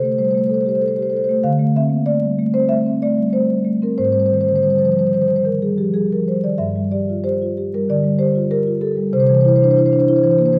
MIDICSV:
0, 0, Header, 1, 2, 480
1, 0, Start_track
1, 0, Tempo, 628272
1, 1095, Time_signature, 4, 2, 24, 8
1, 2541, Tempo, 650054
1, 5901, Tempo, 623701
1, 7991, End_track
2, 0, Start_track
2, 0, Title_t, "Marimba"
2, 0, Program_c, 0, 12
2, 0, Note_on_c, 0, 48, 44
2, 0, Note_on_c, 0, 69, 43
2, 24, Note_on_c, 0, 57, 38
2, 39, Note_on_c, 0, 72, 55
2, 89, Note_off_c, 0, 72, 0
2, 89, Note_on_c, 0, 72, 51
2, 94, Note_off_c, 0, 69, 0
2, 108, Note_off_c, 0, 48, 0
2, 138, Note_on_c, 0, 55, 41
2, 141, Note_off_c, 0, 72, 0
2, 141, Note_on_c, 0, 72, 61
2, 189, Note_off_c, 0, 72, 0
2, 189, Note_on_c, 0, 72, 55
2, 213, Note_off_c, 0, 57, 0
2, 235, Note_off_c, 0, 72, 0
2, 235, Note_on_c, 0, 72, 61
2, 265, Note_on_c, 0, 57, 41
2, 287, Note_off_c, 0, 72, 0
2, 287, Note_on_c, 0, 72, 55
2, 330, Note_off_c, 0, 55, 0
2, 354, Note_off_c, 0, 72, 0
2, 354, Note_on_c, 0, 72, 58
2, 377, Note_on_c, 0, 69, 45
2, 413, Note_off_c, 0, 72, 0
2, 413, Note_on_c, 0, 72, 55
2, 453, Note_off_c, 0, 57, 0
2, 465, Note_off_c, 0, 72, 0
2, 465, Note_on_c, 0, 72, 59
2, 505, Note_on_c, 0, 67, 37
2, 527, Note_off_c, 0, 72, 0
2, 527, Note_on_c, 0, 72, 51
2, 569, Note_off_c, 0, 69, 0
2, 575, Note_off_c, 0, 72, 0
2, 575, Note_on_c, 0, 72, 59
2, 620, Note_on_c, 0, 69, 50
2, 621, Note_off_c, 0, 67, 0
2, 623, Note_off_c, 0, 72, 0
2, 623, Note_on_c, 0, 72, 57
2, 671, Note_off_c, 0, 72, 0
2, 671, Note_on_c, 0, 72, 57
2, 733, Note_off_c, 0, 72, 0
2, 733, Note_on_c, 0, 72, 56
2, 754, Note_on_c, 0, 67, 38
2, 783, Note_off_c, 0, 72, 0
2, 783, Note_on_c, 0, 72, 57
2, 810, Note_off_c, 0, 69, 0
2, 839, Note_off_c, 0, 72, 0
2, 839, Note_on_c, 0, 72, 51
2, 861, Note_on_c, 0, 69, 48
2, 865, Note_off_c, 0, 67, 0
2, 892, Note_off_c, 0, 72, 0
2, 892, Note_on_c, 0, 72, 59
2, 949, Note_off_c, 0, 72, 0
2, 949, Note_on_c, 0, 72, 57
2, 986, Note_on_c, 0, 57, 44
2, 1002, Note_off_c, 0, 72, 0
2, 1002, Note_on_c, 0, 72, 57
2, 1049, Note_off_c, 0, 69, 0
2, 1063, Note_off_c, 0, 72, 0
2, 1096, Note_on_c, 0, 77, 78
2, 1099, Note_on_c, 0, 50, 56
2, 1100, Note_off_c, 0, 57, 0
2, 1216, Note_on_c, 0, 57, 50
2, 1325, Note_off_c, 0, 77, 0
2, 1344, Note_on_c, 0, 60, 44
2, 1347, Note_on_c, 0, 76, 80
2, 1407, Note_off_c, 0, 57, 0
2, 1452, Note_on_c, 0, 58, 41
2, 1531, Note_off_c, 0, 60, 0
2, 1570, Note_off_c, 0, 76, 0
2, 1572, Note_off_c, 0, 58, 0
2, 1573, Note_on_c, 0, 74, 82
2, 1574, Note_on_c, 0, 57, 45
2, 1691, Note_on_c, 0, 55, 40
2, 1765, Note_off_c, 0, 57, 0
2, 1813, Note_off_c, 0, 55, 0
2, 1823, Note_on_c, 0, 57, 51
2, 1919, Note_off_c, 0, 74, 0
2, 1939, Note_on_c, 0, 72, 79
2, 1942, Note_on_c, 0, 60, 43
2, 2011, Note_off_c, 0, 57, 0
2, 2028, Note_off_c, 0, 50, 0
2, 2054, Note_on_c, 0, 76, 87
2, 2057, Note_off_c, 0, 72, 0
2, 2059, Note_on_c, 0, 57, 45
2, 2131, Note_off_c, 0, 60, 0
2, 2185, Note_on_c, 0, 60, 44
2, 2250, Note_off_c, 0, 57, 0
2, 2287, Note_off_c, 0, 76, 0
2, 2309, Note_on_c, 0, 74, 69
2, 2314, Note_on_c, 0, 57, 50
2, 2375, Note_off_c, 0, 60, 0
2, 2429, Note_on_c, 0, 55, 41
2, 2501, Note_off_c, 0, 57, 0
2, 2538, Note_off_c, 0, 74, 0
2, 2542, Note_on_c, 0, 57, 47
2, 2544, Note_on_c, 0, 72, 72
2, 2547, Note_off_c, 0, 55, 0
2, 2673, Note_on_c, 0, 55, 35
2, 2733, Note_off_c, 0, 57, 0
2, 2778, Note_on_c, 0, 57, 42
2, 2787, Note_off_c, 0, 55, 0
2, 2888, Note_off_c, 0, 72, 0
2, 2907, Note_on_c, 0, 60, 39
2, 2914, Note_on_c, 0, 70, 58
2, 2972, Note_off_c, 0, 57, 0
2, 3022, Note_on_c, 0, 72, 74
2, 3024, Note_off_c, 0, 60, 0
2, 3028, Note_off_c, 0, 70, 0
2, 3028, Note_on_c, 0, 44, 51
2, 3073, Note_off_c, 0, 72, 0
2, 3073, Note_on_c, 0, 72, 60
2, 3129, Note_off_c, 0, 72, 0
2, 3129, Note_on_c, 0, 72, 63
2, 3142, Note_on_c, 0, 55, 39
2, 3183, Note_off_c, 0, 72, 0
2, 3183, Note_on_c, 0, 72, 61
2, 3231, Note_off_c, 0, 72, 0
2, 3231, Note_on_c, 0, 72, 60
2, 3274, Note_on_c, 0, 51, 38
2, 3288, Note_off_c, 0, 72, 0
2, 3288, Note_on_c, 0, 72, 60
2, 3336, Note_off_c, 0, 55, 0
2, 3340, Note_off_c, 0, 72, 0
2, 3340, Note_on_c, 0, 72, 66
2, 3389, Note_on_c, 0, 50, 35
2, 3398, Note_off_c, 0, 72, 0
2, 3398, Note_on_c, 0, 72, 57
2, 3450, Note_off_c, 0, 72, 0
2, 3450, Note_on_c, 0, 72, 64
2, 3463, Note_off_c, 0, 51, 0
2, 3504, Note_off_c, 0, 72, 0
2, 3504, Note_on_c, 0, 72, 58
2, 3509, Note_off_c, 0, 50, 0
2, 3516, Note_on_c, 0, 55, 38
2, 3558, Note_off_c, 0, 72, 0
2, 3558, Note_on_c, 0, 72, 62
2, 3619, Note_off_c, 0, 72, 0
2, 3619, Note_on_c, 0, 72, 56
2, 3633, Note_on_c, 0, 53, 35
2, 3667, Note_off_c, 0, 72, 0
2, 3667, Note_on_c, 0, 72, 65
2, 3707, Note_off_c, 0, 55, 0
2, 3718, Note_off_c, 0, 72, 0
2, 3718, Note_on_c, 0, 72, 61
2, 3746, Note_on_c, 0, 55, 38
2, 3753, Note_off_c, 0, 53, 0
2, 3769, Note_off_c, 0, 72, 0
2, 3769, Note_on_c, 0, 72, 61
2, 3828, Note_off_c, 0, 72, 0
2, 3828, Note_on_c, 0, 72, 57
2, 3875, Note_on_c, 0, 51, 37
2, 3883, Note_off_c, 0, 72, 0
2, 3883, Note_on_c, 0, 72, 62
2, 3936, Note_off_c, 0, 72, 0
2, 3936, Note_on_c, 0, 72, 59
2, 3942, Note_off_c, 0, 55, 0
2, 3967, Note_off_c, 0, 44, 0
2, 3984, Note_off_c, 0, 72, 0
2, 3984, Note_on_c, 0, 72, 61
2, 3986, Note_on_c, 0, 55, 38
2, 4044, Note_off_c, 0, 72, 0
2, 4044, Note_on_c, 0, 72, 61
2, 4067, Note_off_c, 0, 51, 0
2, 4084, Note_off_c, 0, 72, 0
2, 4105, Note_on_c, 0, 51, 34
2, 4111, Note_on_c, 0, 70, 55
2, 4182, Note_off_c, 0, 55, 0
2, 4231, Note_off_c, 0, 70, 0
2, 4236, Note_on_c, 0, 68, 56
2, 4240, Note_on_c, 0, 55, 35
2, 4300, Note_off_c, 0, 51, 0
2, 4350, Note_on_c, 0, 53, 32
2, 4352, Note_on_c, 0, 67, 52
2, 4354, Note_off_c, 0, 68, 0
2, 4427, Note_off_c, 0, 55, 0
2, 4470, Note_off_c, 0, 53, 0
2, 4470, Note_on_c, 0, 55, 33
2, 4470, Note_on_c, 0, 68, 57
2, 4471, Note_off_c, 0, 67, 0
2, 4590, Note_off_c, 0, 68, 0
2, 4606, Note_on_c, 0, 53, 30
2, 4607, Note_on_c, 0, 70, 50
2, 4663, Note_off_c, 0, 55, 0
2, 4720, Note_off_c, 0, 53, 0
2, 4720, Note_off_c, 0, 70, 0
2, 4722, Note_on_c, 0, 72, 53
2, 4726, Note_on_c, 0, 55, 32
2, 4838, Note_off_c, 0, 72, 0
2, 4838, Note_on_c, 0, 74, 53
2, 4842, Note_on_c, 0, 51, 33
2, 4913, Note_off_c, 0, 55, 0
2, 4944, Note_on_c, 0, 76, 71
2, 4949, Note_on_c, 0, 43, 48
2, 4956, Note_off_c, 0, 74, 0
2, 4958, Note_off_c, 0, 51, 0
2, 5076, Note_on_c, 0, 55, 40
2, 5178, Note_off_c, 0, 76, 0
2, 5191, Note_on_c, 0, 74, 55
2, 5193, Note_on_c, 0, 67, 38
2, 5265, Note_off_c, 0, 55, 0
2, 5323, Note_on_c, 0, 65, 33
2, 5383, Note_off_c, 0, 67, 0
2, 5419, Note_off_c, 0, 74, 0
2, 5429, Note_on_c, 0, 72, 64
2, 5434, Note_on_c, 0, 67, 43
2, 5435, Note_off_c, 0, 65, 0
2, 5564, Note_on_c, 0, 65, 37
2, 5620, Note_off_c, 0, 67, 0
2, 5674, Note_off_c, 0, 65, 0
2, 5681, Note_on_c, 0, 67, 45
2, 5769, Note_off_c, 0, 72, 0
2, 5801, Note_on_c, 0, 55, 41
2, 5803, Note_on_c, 0, 70, 66
2, 5861, Note_off_c, 0, 67, 0
2, 5869, Note_off_c, 0, 43, 0
2, 5910, Note_off_c, 0, 70, 0
2, 5911, Note_on_c, 0, 50, 43
2, 5917, Note_on_c, 0, 74, 77
2, 5983, Note_off_c, 0, 55, 0
2, 6025, Note_on_c, 0, 55, 39
2, 6100, Note_off_c, 0, 50, 0
2, 6140, Note_on_c, 0, 72, 70
2, 6141, Note_on_c, 0, 67, 47
2, 6142, Note_off_c, 0, 74, 0
2, 6216, Note_off_c, 0, 55, 0
2, 6269, Note_on_c, 0, 65, 36
2, 6334, Note_off_c, 0, 67, 0
2, 6372, Note_off_c, 0, 72, 0
2, 6386, Note_off_c, 0, 65, 0
2, 6387, Note_on_c, 0, 67, 44
2, 6389, Note_on_c, 0, 70, 75
2, 6511, Note_on_c, 0, 65, 37
2, 6576, Note_off_c, 0, 67, 0
2, 6615, Note_off_c, 0, 70, 0
2, 6620, Note_on_c, 0, 67, 47
2, 6622, Note_on_c, 0, 69, 71
2, 6626, Note_off_c, 0, 65, 0
2, 6742, Note_on_c, 0, 55, 44
2, 6812, Note_off_c, 0, 67, 0
2, 6852, Note_off_c, 0, 69, 0
2, 6861, Note_off_c, 0, 55, 0
2, 6865, Note_on_c, 0, 48, 59
2, 6866, Note_on_c, 0, 72, 80
2, 6919, Note_off_c, 0, 72, 0
2, 6919, Note_on_c, 0, 72, 67
2, 6972, Note_off_c, 0, 72, 0
2, 6972, Note_on_c, 0, 72, 68
2, 6991, Note_on_c, 0, 52, 46
2, 7032, Note_off_c, 0, 72, 0
2, 7032, Note_on_c, 0, 72, 64
2, 7081, Note_off_c, 0, 72, 0
2, 7081, Note_on_c, 0, 72, 66
2, 7112, Note_on_c, 0, 64, 50
2, 7136, Note_off_c, 0, 72, 0
2, 7136, Note_on_c, 0, 72, 64
2, 7179, Note_off_c, 0, 52, 0
2, 7197, Note_off_c, 0, 72, 0
2, 7197, Note_on_c, 0, 72, 67
2, 7245, Note_on_c, 0, 62, 39
2, 7257, Note_off_c, 0, 72, 0
2, 7257, Note_on_c, 0, 72, 62
2, 7300, Note_off_c, 0, 64, 0
2, 7311, Note_off_c, 0, 72, 0
2, 7311, Note_on_c, 0, 72, 72
2, 7354, Note_off_c, 0, 62, 0
2, 7362, Note_on_c, 0, 64, 50
2, 7369, Note_off_c, 0, 72, 0
2, 7369, Note_on_c, 0, 72, 61
2, 7427, Note_off_c, 0, 72, 0
2, 7427, Note_on_c, 0, 72, 69
2, 7475, Note_on_c, 0, 62, 41
2, 7481, Note_off_c, 0, 72, 0
2, 7481, Note_on_c, 0, 72, 61
2, 7533, Note_off_c, 0, 72, 0
2, 7533, Note_on_c, 0, 72, 70
2, 7544, Note_off_c, 0, 64, 0
2, 7589, Note_off_c, 0, 62, 0
2, 7597, Note_off_c, 0, 72, 0
2, 7597, Note_on_c, 0, 72, 64
2, 7601, Note_on_c, 0, 64, 53
2, 7660, Note_off_c, 0, 72, 0
2, 7660, Note_on_c, 0, 72, 67
2, 7711, Note_on_c, 0, 52, 48
2, 7717, Note_off_c, 0, 72, 0
2, 7717, Note_on_c, 0, 72, 65
2, 7776, Note_off_c, 0, 72, 0
2, 7776, Note_on_c, 0, 72, 68
2, 7782, Note_off_c, 0, 64, 0
2, 7794, Note_off_c, 0, 48, 0
2, 7831, Note_off_c, 0, 72, 0
2, 7831, Note_on_c, 0, 72, 66
2, 7832, Note_on_c, 0, 58, 48
2, 7887, Note_off_c, 0, 72, 0
2, 7887, Note_on_c, 0, 72, 70
2, 7897, Note_off_c, 0, 52, 0
2, 7943, Note_off_c, 0, 72, 0
2, 7943, Note_on_c, 0, 72, 65
2, 7953, Note_on_c, 0, 52, 47
2, 7991, Note_off_c, 0, 52, 0
2, 7991, Note_off_c, 0, 58, 0
2, 7991, Note_off_c, 0, 72, 0
2, 7991, End_track
0, 0, End_of_file